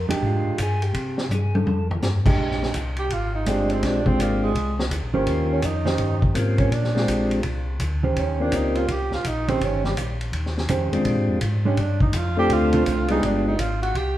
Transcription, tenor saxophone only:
2.99 3.14 G4 medium
3.13 3.35 F4 medium
3.35 3.51 D#4 medium
3.49 3.73 D4 medium
3.72 3.86 C4 medium
3.84 4.08 D4 medium
4.07 4.23 C4 medium
4.21 4.43 A#3 medium
4.43 4.76 G#3 medium
5.52 5.66 C#4 medium
5.65 6.23 D#4 loud
6.58 6.74 C#4 medium
6.73 7.31 D4 medium
8.18 8.43 C#4 medium
8.41 8.57 D4 medium
8.55 8.78 D#4 medium
8.76 8.93 F4 medium
8.91 9.13 G4 medium
9.14 9.29 F4 medium
9.27 9.50 D#4 medium
9.49 9.65 C4 loud
9.64 9.84 C#4 medium
9.85 9.92 G3 medium
11.65 11.81 C#4 medium
11.79 12.01 D4 medium
12.02 12.18 D#4 medium
12.16 12.38 F4 medium
12.38 12.54 G4 loud
12.53 13.11 F4 medium
13.11 13.26 D#4 loud
13.25 13.47 D4 medium
13.48 13.61 D#4 medium
13.60 13.82 F4 medium
13.82 13.98 F#4 medium
13.97 14.18 G4 medium

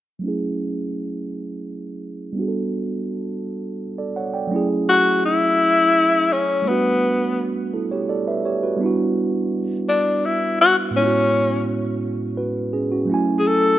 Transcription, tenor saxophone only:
4.89 5.21 F#4 medium
5.25 6.34 E4 loud
6.32 6.70 C#4 medium
6.68 7.47 B3 medium
9.89 10.26 D4 medium
10.25 10.59 E4 medium
10.61 10.76 F#4 medium
10.96 11.71 C#4 medium
13.39 13.49 G#4 medium
13.47 13.79 A4 medium

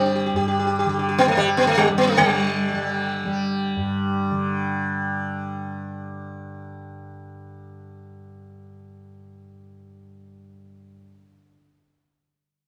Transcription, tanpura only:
0.00 0.33 G2 medium
0.00 0.85 D3 medium
0.00 1.38 G3 medium
0.34 3.76 G2 medium
0.85 2.19 D3 medium
1.38 1.90 G3 medium
1.90 2.73 G3 medium
2.19 4.31 D3 medium
2.73 3.25 G3 medium
3.25 9.79 G3 medium
3.76 10.91 G2 medium
4.31 11.46 D3 medium

